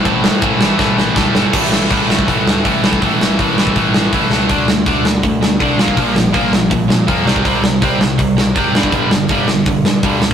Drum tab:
CC |----------------|x---------------|----------------|----------------|
RD |x---x-----------|----------------|----------------|----------------|
HH |----------------|----o---o---o---|o---o---o---o---|o---o---o---o---|
SD |--o---o-o-o-o-o-|--o---o---o---o-|--o---o---o---o-|--o---o---o---o-|
BD |o---o---o---o---|o---o--oo---o--o|o---o--oo---o---|o---o---o---o--o|

CC |----------------|----------------|----------------|
RD |----------------|----------------|----------------|
HH |o---o---o---o---|o---o---o---o---|o---o---o---o---|
SD |--o---o---o---o-|--o---o---o---o-|--o---o---o---o-|
BD |o---o---o---o--o|o---o---o---o--o|o---o---o---o---|